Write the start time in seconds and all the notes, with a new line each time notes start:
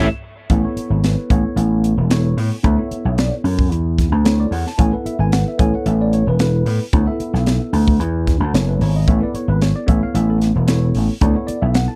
0.50 A1 B3 E4 A4 C#5, kick, closed hi-hat
0.63 B3 E4 A4 C#5
0.76 muted slap bass stroke, closed hi-hat
0.90 G#1
1.04 B4, snare, closed hi-hat
1.30 A1 B3 E4 A4 C#5, kick, closed hi-hat
1.56 A1, closed hi-hat
1.84 closed hi-hat
1.97 E1
2.10 B3 E4 A4 C#5, snare, closed hi-hat
2.37 A2, open hi-hat
2.63 D2 B3 E4 A4 C#5 E5, kick, closed hi-hat
2.78 B3 E4 A4 C#5
2.91 muted slap bass stroke, closed hi-hat
3.05 B1
3.18 D5, snare, closed hi-hat
3.44 F#2, open hi-hat
3.59 kick
3.71 E2, closed hi-hat
3.98 kick, snare, closed hi-hat
4.12 D2
4.24 B3 E4 A4 C#5, snare, closed hi-hat
4.40 D5
4.51 E2 F#5, open hi-hat
4.67 A5, snare
4.78 A1 B3 E4 A4 C#5 G#5, kick, closed hi-hat
4.92 B3 E4 A4 B4
5.05 E5, muted slap bass stroke, closed hi-hat
5.19 G#1 G#5
5.32 F#5, snare, closed hi-hat
5.48 E5
5.58 A1 B3 E4 A4 C#5 G#5, kick, closed hi-hat
5.75 F#5
5.86 A1 E5, closed hi-hat
6.02 D5
6.13 C#5, closed hi-hat
6.27 E1 B4
6.39 B3 E4 A4 B4, snare, closed hi-hat
6.66 A2, open hi-hat
6.93 D2 B3 E4 A4 C#5, kick, closed hi-hat
7.06 B3 E4 A4 E5
7.20 muted slap bass stroke, closed hi-hat
7.34 B1, snare
7.46 snare, closed hi-hat
7.73 D2, open hi-hat
7.88 kick
8.00 E2, closed hi-hat
8.27 kick, snare, closed hi-hat
8.40 D2
8.54 F#1 B3 E4 A4 C#5, snare, closed hi-hat
8.69 B4
8.81 G#1 C#5, open hi-hat
8.96 D#5
9.07 A1 B3 E4 A4 C#5 E5, kick, closed hi-hat
9.20 B3 E4 A4 B4 D5
9.34 C#5, muted slap bass stroke, closed hi-hat
9.48 G#1 B4
9.61 C#5, snare, closed hi-hat
9.76 D5
9.86 A1 B3 E4 A4 C#5 E5, kick, closed hi-hat
10.03 F5
10.14 A1 E5, closed hi-hat
10.30 A4
10.41 snare, closed hi-hat
10.55 E1
10.67 B3 E4 A4 C#5, snare, closed hi-hat
10.95 A1, open hi-hat
11.21 D2 B3 E4 A4 C#5 D5, kick, closed hi-hat
11.35 B3 E4 A4 C#5
11.47 D5, muted slap bass stroke, closed hi-hat
11.62 B1 E5
11.74 F#5, snare, closed hi-hat
11.88 A5